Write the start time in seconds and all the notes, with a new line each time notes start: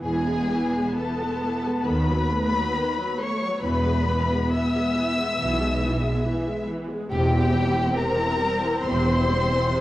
0.04 E1 E2 E3 B3 G#4 G#5
0.27 G#3
0.51 E3
0.74 G#3
0.96 E3 A4 A5
1.21 G#3
1.44 E3
1.64 G#3
1.85 D#2 D#3 B4 B5
2.09 F#3
2.32 A3
2.54 F#3
2.75 D#3
2.99 F#3
3.19 A3 C#5 C#6
3.43 F#3
3.61 E1 E2 E3 B3 B4 B5
3.84 G#3
4.09 E3
4.33 G#3
4.53 E3 E5 E6
4.77 G#3
4.96 E3
5.19 G#3
5.39 B1 B2 E3
5.62 G#3
5.83 E3
6.04 G#3
6.26 E3
6.48 G#3
6.69 E3
6.90 G#3
7.12 E1 E2 C3 C4 G4 G5
7.35 E3
7.54 G3
7.75 E3
7.96 C3 A#4 A#5
8.17 E3
8.39 G3
8.62 E3
8.82 E1 E2 C3 C5 C6
9.06 E3
9.27 G3
9.51 E3
9.72 C3